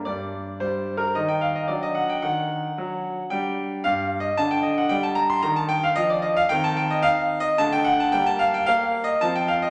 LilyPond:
<<
  \new Staff \with { instrumentName = "Grand piano" } { \time 3/4 \key g \minor \tempo 4 = 111 << { d''4 \tuplet 3/2 { c''4 bes'8 } ees''16 g''16 f''16 ees''16 | d''16 ees''16 fis''16 g''16 fis''2 | g''4 \tuplet 3/2 { f''4 ees''8 } a''16 g''16 ees''16 fis''16 | g''16 a''16 bes''16 c'''16 bes''16 a''16 g''16 f''16 ees''16 d''16 ees''16 f''16 |
g''16 a''16 g''16 ees''16 \tuplet 3/2 { f''4 ees''8 } a''16 g''16 fis''16 a''16 | g''16 a''16 f''16 g''16 \tuplet 3/2 { f''4 ees''8 } a''16 g''16 f''16 ees''16 | } \\ { d'2 ees'4 | d'2. | d'2 d'4 | d'2. |
c'2 a4 | bes2 c'4 | } >> }
  \new Staff \with { instrumentName = "Grand piano" } { \clef bass \time 3/4 \key g \minor g,4 g4 ees4 | fis4 ees4 fis4 | g4 g,4 d4 | g4 ees4 f4 |
ees4 ees'4 d4 | g4 bes4 f4 | }
>>